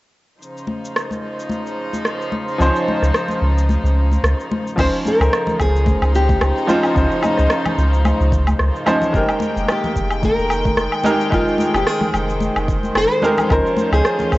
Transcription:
0.40 C#3 F3 D#4 C5, cabasa
0.58 cabasa
0.67 high conga
0.85 cabasa
0.96 cross-stick, cabasa
1.11 high conga, cabasa
1.40 cabasa
1.50 high conga, cabasa
1.67 cabasa
1.93 high conga, cabasa
2.05 cross-stick, cabasa
2.21 cabasa
2.32 high conga
2.48 cabasa
2.58 C#2 F3 C#4 D#4 C5, cabasa
2.76 cabasa
2.88 high conga
3.02 C#2, cross-stick, cabasa
3.14 cross-stick, cabasa
3.28 high conga, cabasa
3.42 C#2
3.58 cabasa
3.69 high conga, cabasa
3.84 C#2, cabasa
4.11 high conga, cabasa
4.23 C#2, cross-stick, cabasa
4.40 cabasa
4.51 high conga
4.67 cabasa
4.76 C#2 C#3 F3 C#4 D#4 C5, kick, crash, cabasa, low woodblock
4.80 C5
4.95 cabasa
5.05 A#4, high conga, cabasa
5.20 C#2, cabasa, low woodblock
5.33 cross-stick, cabasa
5.47 high conga, low conga, cabasa
5.60 C#2 G#4, kick, cabasa, low woodblock
5.76 cabasa
5.86 kick, high conga, cabasa
6.02 C#2, cabasa, low woodblock
6.15 G4, cabasa
6.29 kick, high conga, cabasa
6.41 C#2, cross-stick, cabasa, low woodblock
6.57 cabasa
6.67 F3 C#4 D#4 F4 C5, high conga, cabasa
6.83 cabasa, low woodblock
6.94 C#2 F3 C#4 D#4 C5, kick, cabasa
7.11 cabasa
7.23 D#4, high conga, cabasa, low woodblock
7.38 C#2, cross-stick, cabasa
7.50 cross-stick, cabasa
7.65 high conga, low conga, cabasa, low woodblock
7.78 C#2, cabasa
7.93 cabasa
8.05 high conga, cabasa, low woodblock
8.20 C#2, cabasa
8.32 kick, cabasa
8.47 high conga, cabasa, low woodblock
8.59 C#2, cross-stick, cabasa
8.76 cabasa
8.86 F3 C#4 D#4 C5, high conga, cabasa, low woodblock
9.02 low conga, cabasa
9.12 F1 D#3 G#3 A#3 D#4 G4 A#4 G5, kick, cabasa
9.29 cabasa, low woodblock
9.40 high conga, cabasa
9.57 F1, cabasa
9.68 G4, cross-stick, cabasa, low woodblock
9.84 high conga, low conga, cabasa
9.96 F1, kick, cabasa
10.11 cabasa, low woodblock
10.23 A#4, kick, high conga, cabasa
10.38 F1, cabasa
10.50 cabasa, low woodblock
10.65 kick, high conga, cabasa
10.77 F1, cross-stick, cabasa
10.92 cabasa, low woodblock
11.04 G#3 D#4 G4 A#4, high conga, cabasa
11.21 cabasa
11.30 F1 G#3 D#4 F4 A#4 C5 G5, kick, cabasa, low woodblock
11.48 cabasa
11.58 high conga, cabasa
11.74 F1 G4, cross-stick, cabasa, low woodblock
11.87 G#4, cross-stick, cabasa
12.01 high conga, low conga, cabasa
12.14 F1, cabasa, low woodblock
12.30 cabasa
12.41 high conga, cabasa
12.56 F1, cabasa, low woodblock
12.68 kick, cabasa
12.83 high conga, cabasa
12.95 F1 C5, cross-stick, cabasa, low woodblock
13.12 cabasa
13.22 G#3 D#4 G4 A#4, high conga, cabasa
13.38 low conga, cabasa, low woodblock
13.49 C#2 F3 C#4 D#4 F4 A#4 C5, kick, cabasa, low woodblock
13.66 cabasa
13.77 high conga, cabasa
13.92 C#2 G#4, cabasa, low woodblock
14.05 cross-stick, cabasa
14.19 high conga, low conga, cabasa
14.32 C#2, kick, cabasa, low woodblock

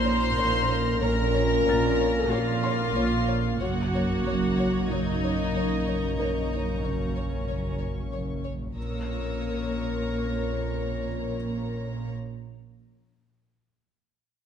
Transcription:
Already playing: A#1 F2 A#2 A#3 C#4 D#4 A#4 C5 C6 F6 A#6
0.04 C#5
0.38 A#1 A#2 C#5
0.67 C#5
1.01 A#1 A#2 C#4 A#4 C#5 A#5
1.33 C#5
1.66 A#1 A#2 C#5 A6
1.99 C#5
2.30 A#1 A#2 A#3 F4 C#5 F5
2.63 C#5 C6
2.96 A#1 A#2 C#5
3.27 C#5
3.60 F#1 A#1 F#2 A#3 C#4 F#4 A#4 C#5 F#5 A#5 C#6 G#6
3.94 C#5
4.25 F#1 F#2 C#5
4.59 C#5
4.89 F#1 F#2 F#3 D#4 C#5 D#5
5.24 C#5
5.54 F#1 F#2 C#5
5.87 C#5
6.18 F#1 F#2 F#3 D#4 A#4 C#5 D#5
6.24 G6
6.53 C#5
6.82 F#1 F#2 F#3 C#4 C#5
7.15 C#5
7.47 F#1 F#2 C#5
7.79 C#5
8.12 F#1 F#2 C#5
8.45 C#5
8.76 A#1 F2 A#2 A#3 C#4 A#4 C#5 A#5 C#6 D#6 E6

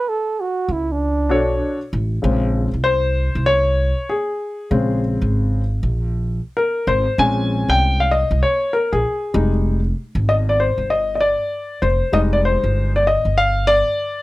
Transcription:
Already playing: B4
0.09 A4
0.40 F#4
0.68 C#2 E4
0.92 D4
1.29 B1 D4 F#4 A4 C#5
1.93 A1
2.22 A#1 C#3 G#3 C4
2.74 C2
2.84 C5
3.35 C2
3.46 C#5
4.09 G#4
4.71 A#1 C#3 G#3 C4
5.22 G#1
5.83 A#1
6.57 A#4
6.87 G#1 C5
7.18 A#1 G#3 C4 C#4 G#5
7.68 C2 G5
8.00 F5
8.11 D#5
8.31 C2
8.43 C#5
8.73 A#4
8.93 A#1 G#4
9.34 F1 G3 G#3 D#4
10.15 G#1
10.29 D#5
10.49 D5
10.60 C5
10.78 G1
10.90 D#5
11.15 D#5
11.21 D5
11.82 F1 C5
12.12 F1 G3 G#3 D#4 D#5
12.33 D5
12.45 C5
12.64 G1
12.96 D5
13.07 D#5
13.25 G1
13.38 F5
13.67 D5

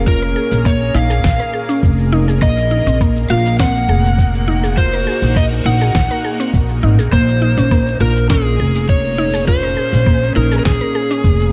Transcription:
Already playing: F1 A#2 A#3 C#4 G#4 A#4
0.06 F4 A#4, kick, shaker
0.22 A#4, shaker
0.36 G#4
0.51 A#1, shaker
0.65 A#3 C#5, kick, shaker
0.81 shaker
0.94 A#1 D#4 F5
1.10 G#4, shaker
1.24 A#1, kick, snare, shaker
1.40 A#4, shaker
1.53 G#4
1.69 C#4, shaker
1.83 F1, kick, shaker
1.99 shaker
2.12 D#4
2.28 G#4, shaker
2.42 A#1 A#2 A#3 D#5, kick, shaker
2.58 shaker
2.71 D#4
2.87 A#1 C4, shaker
3.01 A#3, kick, shaker
3.16 shaker
3.30 A#1 F4 F5
3.40 D#4
3.46 shaker
3.60 C4 F#5, kick, snare, shaker
3.72 F#4, shaker
3.89 F1 G#4
4.05 shaker
4.18 kick, shaker
4.34 shaker
4.48 D#4
4.64 G#4, shaker
4.77 F4 C5, kick, shaker
4.93 A#4, shaker
5.07 G#4
5.22 A#1, shaker
5.36 A#3 D#5, kick, shaker
5.52 shaker
5.65 A#1 D#4 F#5
5.81 G#4, shaker
5.95 A#1, kick, snare, shaker
6.11 A#4, shaker
6.25 G#4
6.40 C4, shaker
6.54 A#1, kick, shaker
6.70 shaker
6.83 G#1 D#4
6.99 A#1 G#4, shaker
7.12 A#1 A#3 C5, kick, shaker
7.28 shaker
7.42 D#4
7.57 A#1 C#4, shaker
7.71 A#3, kick, shaker
7.76 G#4
7.87 shaker
8.00 A#1 C#4 F4 A#4
8.16 shaker
8.30 C#4 G#4, kick, snare, shaker
8.46 shaker
8.59 F1 G#4
8.75 shaker
8.89 C#5, kick, shaker
9.05 shaker
9.18 D#4
9.34 G#4, shaker
9.48 F4 C5, kick, shaker
9.63 A#4, shaker
9.77 G#4
9.93 A#1, shaker
10.06 A#3, kick, shaker
10.22 shaker
10.36 A#1 D#4 A#4
10.52 G#4, shaker
10.59 A#4
10.65 A#1 G#4, kick, snare, shaker
10.81 A#4, shaker
10.95 G#4
11.11 C#4, shaker
11.24 F1, kick, shaker
11.40 shaker

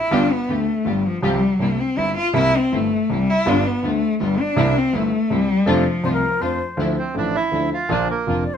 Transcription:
Already playing: E4
0.11 G1 G2 D3 G3 B3 D4 F4 G4
0.32 B3
0.49 D2 D3 A3 B3 F4 G4
0.85 G1 G2 B3 F4 G4
0.89 G3
1.07 F3
1.22 C2 C3 F3 G3 C4 F4 G4
1.60 C2 C3 A#3 C4 D4 E4
1.80 C4
1.97 G1 G2 C4 D4 E4
2.17 F4
2.33 C2 C3 G3 A#3 C4 E4
2.38 E4
2.57 C4
2.72 G1 G2 A3 A#3 C4 E4
3.10 C2 C3 G3 A#3 C4 E4
3.31 E4
3.45 G1 G2 D3 G3 B3 D4 F4
3.67 B3
3.82 D2 D3 G3 A3 B3 F4
4.20 G1 G2 G3 B3 F4
4.40 D4
4.56 C2 C3 G3 A#3 C4 E4
4.78 C4
4.93 G1 G2 A3 A#3 C4 E4
5.30 C2 C3 G3 A#3 C4 E4
5.66 F2 C3 F3 A3 D4 F4
5.70 F3
6.03 C2 C3 A3 D4 F4 C5
6.13 A#4
6.40 F2 F3 A3 D4 F4 C5
6.77 D2 D3 F3 A3 D4 E4
6.99 C4
7.14 A1 A2 D3 F3 A3 D4 E4
7.35 E4
7.52 D2 D3 F3 A3 D4 E4
7.74 F4
7.89 A#1 A#2 D3 F3 A#3 D4 F4
8.10 A#3
8.27 F1 F2 D3 F3 A#3 D4 F4
8.45 D5
8.54 C5

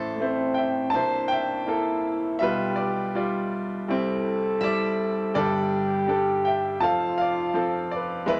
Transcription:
Already playing: A1 A2 A3 E4 A4 C5 E5
0.19 A3 C4 E4 C5
0.54 E5 G5
0.90 A#3 D4 E4 C5 A5
0.94 C2 C3 C5 E5
1.28 G5
1.33 E5
1.66 A#3 E4 A4
2.39 B1 B2 G3 F4 G4 B4 E5
2.76 D5
2.81 B4
3.15 G3 F4 D5
3.87 C2 C3 G3 C4 E4 A4
4.61 G3 E4 D5 E5
5.34 G1 G2 G3 D4 G4 A4 D5
6.07 G3 D4 A4
6.45 E5 G5
6.80 F1 F2 F3 C4 F4 A4 F5 A5
7.18 D5 F5
7.54 F3 C4 A4
7.91 D5
7.96 B4
8.26 E2 E3 G#3 E4 B4 D5 E5
8.32 B4

